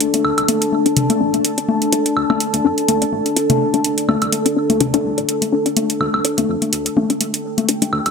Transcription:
Already playing: ambient pad D4 A4 A5
0.00 closed hi-hat
0.14 synth arpeggio sound D4, closed hi-hat, high conga
0.25 analog synth bass D2, high woodblock
0.38 analog synth bass C2, closed hi-hat, high woodblock
0.48 synth arpeggio sound D4, closed hi-hat, high conga
0.62 closed hi-hat
0.73 high conga
0.86 synth arpeggio sound D4, closed hi-hat
0.97 closed hi-hat, mid tom
1.10 closed hi-hat, high conga
1.21 analog synth bass A1, synth arpeggio sound D4
1.34 analog synth bass C2, closed hi-hat, high conga
1.45 closed hi-hat
1.58 synth arpeggio sound D4, closed hi-hat
1.69 high conga
1.82 closed hi-hat
1.93 synth arpeggio sound D4, closed hi-hat, high conga
2.06 closed hi-hat
2.17 analog synth bass D2, high woodblock
2.30 analog synth bass C2, synth arpeggio sound D4, high conga, high woodblock
2.40 closed hi-hat
2.54 analog synth bass D2, closed hi-hat, high conga
2.65 analog synth bass F2, synth arpeggio sound D4
2.78 closed hi-hat
2.88 analog synth bass D2, closed hi-hat, high conga
3.02 synth arpeggio sound D4, closed hi-hat
3.13 analog synth bass A1, high conga
3.26 closed hi-hat
3.37 synth arpeggio sound D4, closed hi-hat
3.50 closed hi-hat, mid tom, high conga
3.74 synth arpeggio sound D4, closed hi-hat, high conga
3.84 closed hi-hat
3.98 closed hi-hat
4.08 analog synth bass D2, synth arpeggio sound D4, high conga, high woodblock
4.22 analog synth bass C2, closed hi-hat, high woodblock
4.32 closed hi-hat, high conga
4.46 synth arpeggio sound D4, closed hi-hat
4.56 synth arpeggio sound D4
4.70 analog synth bass D2, closed hi-hat, high conga
4.80 synth arpeggio sound D4, closed hi-hat, mid tom
4.94 synth arpeggio sound D4, closed hi-hat, high conga
5.05 analog synth bass C2
5.18 analog synth bass A1, synth arpeggio sound D4, closed hi-hat
5.29 closed hi-hat
5.42 closed hi-hat, high conga
5.53 synth arpeggio sound D4
5.66 synth arpeggio sound D4, closed hi-hat
5.77 closed hi-hat, high conga
5.90 closed hi-hat
6.01 analog synth bass D2, high conga, high woodblock
6.14 analog synth bass C2, high woodblock
6.25 synth arpeggio sound D4, closed hi-hat
6.38 analog synth bass D2, synth arpeggio sound D4, closed hi-hat, high conga
6.49 analog synth bass F2
6.62 closed hi-hat, high conga
6.73 analog synth bass D2, closed hi-hat
6.84 ambient pad G5, closed hi-hat
6.97 analog synth bass A1, synth arpeggio sound D4, high conga
7.10 synth arpeggio sound D4, closed hi-hat
7.21 closed hi-hat, high conga
7.34 closed hi-hat
7.58 closed hi-hat, high conga
7.69 synth arpeggio sound D4, closed hi-hat
7.82 synth arpeggio sound D4, closed hi-hat, high conga
7.93 analog synth bass D2, high woodblock
8.06 analog synth bass C2, closed hi-hat, high woodblock

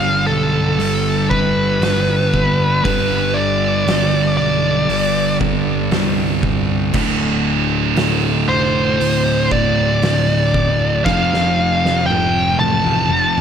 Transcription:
Already playing: picked electric bass G1, distorted electric guitar G2 D3 G3, lead electric guitar F5
0.27 picked electric bass B1, lead electric guitar A4
0.79 picked electric bass G1, distorted electric guitar G2 D3 G3, open hi-hat
1.30 lead electric guitar B4, kick
1.81 picked electric bass G1, snare, open hi-hat
2.34 kick
2.84 picked electric bass G1, distorted electric guitar G2 D3 G3, lead electric guitar B4, kick, open hi-hat
3.34 lead electric guitar D5
3.86 picked electric bass G1, snare, open hi-hat
4.37 picked electric bass B1, lead electric guitar D5
4.88 picked electric bass G1, distorted electric guitar G2 D3 G3, open hi-hat
5.41 kick
5.91 picked electric bass C2, snare, open hi-hat
6.43 kick
6.93 picked electric bass D1, distorted electric guitar D2 A2 D3, kick, crash
7.96 picked electric bass D1, snare, open hi-hat
8.48 picked electric bass F1, lead electric guitar C5
8.97 picked electric bass D1, distorted electric guitar D2 A2, open hi-hat
9.02 distorted electric guitar D3
9.51 lead electric guitar D5, kick
10.02 picked electric bass D1, snare, open hi-hat
10.54 kick
11.04 picked electric bass F1, distorted electric guitar F2 C3 F3, lead electric guitar F5, kick, snare
11.34 snare
11.85 snare
12.06 picked electric bass F1, lead electric guitar G5
12.10 high tom
12.58 picked electric bass A1, lead electric guitar A5, high tom
12.87 mid tom
13.10 picked electric bass F1, distorted electric guitar F2 C3 F3
13.38 mid tom

